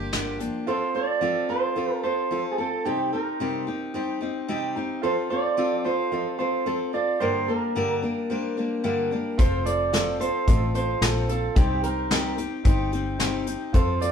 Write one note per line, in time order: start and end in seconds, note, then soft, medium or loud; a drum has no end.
0.00 0.48 G1 medium
0.00 0.12 F3 soft
0.00 0.12 A#3 soft
0.00 0.12 D4 soft
0.00 0.13 G4 soft
0.00 0.36 G4 medium
0.12 0.40 G2 medium
0.12 0.40 D3 medium
0.12 0.40 F3 medium
0.12 0.40 A#3 medium
0.12 0.39 D4 medium
0.12 0.63 F4 medium
0.12 0.64 G4 medium
0.12 0.38 G4 medium
0.12 0.64 A#4 medium
0.12 snare loud
0.12 closed hi-hat medium
0.39 0.66 F3 soft
0.39 0.67 A#3 soft
0.39 0.68 D4 medium
0.39 0.67 G4 soft
0.39 closed hi-hat medium
0.67 0.95 F3 medium
0.67 0.95 C4 medium
0.67 1.18 F4 loud
0.67 0.94 F4 medium
0.67 1.18 A4 medium
0.67 0.93 A4 medium
0.67 1.18 C5 loud
0.67 0.93 C5 medium
0.95 1.21 C4 soft
0.95 1.21 F4 soft
0.95 1.21 A4 soft
0.95 1.49 D5 loud
1.21 1.49 F3 medium
1.21 1.49 C4 medium
1.21 1.72 F4 medium
1.21 1.49 F4 medium
1.21 1.73 A4 medium
1.21 1.48 A4 medium
1.21 1.73 D5 medium
1.49 1.75 C4 soft
1.49 1.76 F4 medium
1.49 1.76 A4 medium
1.49 2.03 C5 medium
1.76 2.03 F3 medium
1.76 2.04 C4 medium
1.76 2.27 F4 medium
1.76 2.03 F4 medium
1.76 2.27 A4 medium
1.76 2.02 A4 medium
1.76 2.27 D5 medium
2.03 2.30 C4 soft
2.03 2.31 F4 soft
2.03 2.31 A4 soft
2.03 2.53 C5 loud
2.31 2.58 F3 medium
2.31 2.58 C4 medium
2.31 2.82 F4 medium
2.31 2.58 F4 medium
2.31 2.82 A4 medium
2.31 2.57 A4 medium
2.31 2.82 C5 medium
2.52 2.58 G#4 medium
2.58 2.85 C4 soft
2.58 2.86 F4 soft
2.58 2.85 A4 soft
2.58 2.84 A4 medium
2.85 3.13 C3 medium
2.85 3.13 G3 medium
2.85 3.13 C4 medium
2.85 3.36 D#4 medium
2.85 3.12 D#4 medium
2.85 3.11 G4 medium
2.85 3.36 G4 medium
2.85 3.11 G4 medium
2.85 3.36 C5 loud
3.13 3.40 C4 soft
3.13 3.40 D#4 soft
3.13 3.40 G4 soft
3.13 3.63 A#4 medium
3.40 3.67 C3 medium
3.40 3.67 G3 medium
3.40 3.68 C4 medium
3.40 3.90 D#4 medium
3.40 3.67 D#4 medium
3.40 3.91 G4 medium
3.40 3.66 G4 medium
3.40 3.91 A#4 medium
3.67 3.94 C4 soft
3.67 3.94 D#4 soft
3.67 3.94 G4 medium
3.94 4.21 G3 medium
3.94 4.21 C4 medium
3.94 4.45 D#4 medium
3.94 4.21 D#4 medium
3.94 4.45 G4 medium
3.94 4.19 G4 medium
3.94 4.45 C5 medium
4.21 4.48 C4 medium
4.21 4.48 D#4 medium
4.21 4.48 G4 medium
4.21 4.47 D#5 medium
4.48 4.76 C3 medium
4.48 4.76 G3 medium
4.48 4.76 C4 medium
4.48 4.99 D#4 medium
4.48 4.76 D#4 medium
4.48 4.99 G4 medium
4.48 4.75 G4 medium
4.48 4.99 D#5 medium
4.48 4.74 G5 medium
4.75 5.02 C4 medium
4.75 5.04 D#4 medium
4.75 5.03 G4 medium
4.75 5.01 A#5 medium
5.02 5.30 F3 medium
5.02 5.31 C4 medium
5.02 5.53 F4 medium
5.02 5.30 F4 medium
5.02 5.53 A4 medium
5.02 5.29 A4 medium
5.02 5.54 C5 loud
5.02 5.11 C5 loud
5.30 5.56 C4 soft
5.30 5.57 F4 medium
5.30 5.58 A4 soft
5.30 5.85 D5 loud
5.57 5.85 F3 medium
5.57 5.85 C4 medium
5.57 6.08 F4 medium
5.57 5.84 F4 medium
5.57 6.08 A4 medium
5.57 5.83 A4 medium
5.57 6.09 C5 medium
5.84 6.11 C4 soft
5.84 6.12 F4 medium
5.84 6.12 A4 soft
5.84 6.36 C5 medium
6.11 6.39 F3 medium
6.11 6.39 C4 medium
6.11 6.62 F4 medium
6.11 6.38 F4 medium
6.11 6.63 A4 medium
6.11 6.37 A4 medium
6.11 6.63 D#5 medium
6.38 6.65 C4 soft
6.38 6.66 F4 soft
6.38 6.66 A4 soft
6.38 6.94 C5 medium
6.65 6.93 F3 medium
6.65 6.94 C4 medium
6.65 7.16 F4 medium
6.65 6.93 F4 medium
6.65 7.17 A4 medium
6.65 6.92 A4 medium
6.65 7.17 C5 medium
6.93 7.21 C4 soft
6.93 7.21 F4 soft
6.93 7.21 A4 soft
6.93 7.19 D5 medium
7.20 7.48 G2 medium
7.20 7.48 D3 medium
7.20 7.48 G3 medium
7.20 7.48 A#3 medium
7.20 7.47 D4 medium
7.20 7.71 G4 medium
7.20 7.72 A#4 medium
7.20 7.47 A#4 medium
7.20 7.46 C5 medium
7.20 7.72 D5 loud
7.48 7.75 G3 soft
7.48 7.75 A#3 soft
7.48 7.76 D4 soft
7.48 7.75 A#4 soft
7.48 7.99 A#4 medium
7.75 8.03 G2 medium
7.75 8.03 D3 medium
7.75 8.03 G3 medium
7.75 8.03 A#3 medium
7.75 8.02 D4 medium
7.75 8.26 G4 medium
7.75 8.26 A#4 medium
7.75 8.01 A#4 medium
7.75 8.26 D5 medium
8.02 8.29 G3 soft
8.02 8.29 A#3 soft
8.02 8.30 D4 soft
8.02 8.30 A#4 medium
8.29 8.57 G3 medium
8.29 8.57 A#3 medium
8.29 8.56 D4 medium
8.29 8.80 G4 medium
8.29 8.80 A#4 medium
8.29 8.56 A#4 medium
8.29 8.81 C5 medium
8.57 8.83 G3 soft
8.57 8.83 A#3 soft
8.57 8.84 D4 medium
8.57 8.84 A#4 medium
8.84 9.11 G2 medium
8.84 9.11 D3 medium
8.84 9.11 G3 medium
8.84 9.11 A#3 medium
8.84 9.11 D4 medium
8.84 9.34 G4 medium
8.84 9.35 A#4 medium
8.84 9.10 A#4 medium
8.84 9.35 F5 medium
9.11 9.38 G3 soft
9.11 9.38 A#3 soft
9.11 9.39 D4 medium
9.11 9.39 A#4 soft
9.38 10.29 F1 medium
9.38 9.66 F3 medium
9.38 9.66 C4 medium
9.38 9.89 F4 loud
9.38 9.65 F4 medium
9.38 9.89 A4 medium
9.38 9.64 A4 medium
9.38 9.64 C5 loud
9.38 9.90 C5 loud
9.38 kick loud
9.38 closed hi-hat medium
9.65 9.92 C4 soft
9.65 9.92 F4 soft
9.65 9.93 A4 soft
9.65 10.17 D5 loud
9.65 closed hi-hat medium
9.92 10.20 F3 medium
9.92 10.20 C4 medium
9.92 10.43 F4 medium
9.92 10.19 F4 medium
9.92 10.44 A4 medium
9.92 10.18 A4 medium
9.92 10.44 C5 medium
9.92 snare loud
9.92 closed hi-hat medium
10.20 10.47 C4 soft
10.20 10.48 F4 soft
10.20 10.47 A4 medium
10.20 10.74 C5 loud
10.20 closed hi-hat medium
10.46 10.94 A1 medium
10.46 10.75 F3 medium
10.46 10.75 C4 medium
10.46 10.97 F4 medium
10.46 10.74 F4 medium
10.46 10.98 A4 medium
10.46 10.73 A4 medium
10.46 10.98 D#5 medium
10.46 kick loud
10.46 closed hi-hat medium
10.74 11.01 C4 soft
10.74 11.01 F4 soft
10.74 11.02 A4 medium
10.74 11.26 C5 loud
10.74 closed hi-hat medium
11.01 11.48 A#1 medium
11.01 11.29 F3 medium
11.01 11.29 C4 medium
11.01 11.52 F4 medium
11.01 11.29 F4 medium
11.01 11.52 A4 medium
11.01 11.28 A4 medium
11.01 11.53 C5 medium
11.01 snare loud
11.01 closed hi-hat medium
11.29 11.56 C4 soft
11.29 11.57 F4 soft
11.29 11.56 A4 soft
11.29 11.55 A4 medium
11.29 closed hi-hat medium
11.55 12.46 C2 medium
11.55 11.84 C3 medium
11.55 11.84 G3 medium
11.55 11.84 C4 medium
11.55 12.06 D#4 medium
11.55 11.84 D#4 medium
11.55 12.07 G4 medium
11.55 11.82 G4 medium
11.55 12.07 C5 loud
11.55 kick loud
11.55 closed hi-hat medium
11.83 12.10 C4 soft
11.83 12.10 D#4 soft
11.83 12.11 G4 medium
11.83 12.34 A#4 medium
11.83 closed hi-hat medium
12.09 12.38 C3 medium
12.09 12.38 G3 medium
12.09 12.38 C4 medium
12.09 12.61 D#4 medium
12.09 12.38 D#4 medium
12.09 12.61 G4 medium
12.09 12.36 G4 medium
12.09 12.61 D#5 medium
12.09 snare loud
12.09 closed hi-hat medium
12.38 12.65 C4 soft
12.38 12.65 D#4 medium
12.38 12.65 G4 medium
12.38 closed hi-hat medium
12.63 13.55 G1 medium
12.63 12.92 G3 medium
12.63 12.93 C4 medium
12.63 13.15 D#4 medium
12.63 12.92 D#4 medium
12.63 13.15 G4 medium
12.63 12.91 G4 medium
12.63 13.15 C5 medium
12.63 kick loud
12.63 closed hi-hat medium
12.92 13.19 C4 medium
12.92 13.19 D#4 medium
12.92 13.20 G4 medium
12.92 closed hi-hat medium
13.18 13.47 C3 medium
13.18 13.47 G3 medium
13.18 13.47 C4 medium
13.18 13.69 D#4 medium
13.18 13.46 D#4 medium
13.18 13.70 G4 medium
13.18 13.45 G4 medium
13.18 13.70 C5 medium
13.18 snare medium
13.18 closed hi-hat medium
13.46 13.73 C4 soft
13.46 13.74 D#4 soft
13.46 13.74 G4 medium
13.46 closed hi-hat medium
13.73 14.12 F2 medium
13.73 14.01 F3 medium
13.73 14.01 C4 medium
13.73 14.12 F4 medium
13.73 14.00 F4 medium
13.73 14.12 A4 medium
13.73 13.99 A4 medium
13.73 13.99 C5 loud
13.73 14.12 C5 loud
13.73 kick medium
13.73 closed hi-hat medium
14.00 14.12 C4 soft
14.00 14.12 F4 medium
14.00 14.12 A4 soft
14.00 14.12 D5 loud
14.00 closed hi-hat medium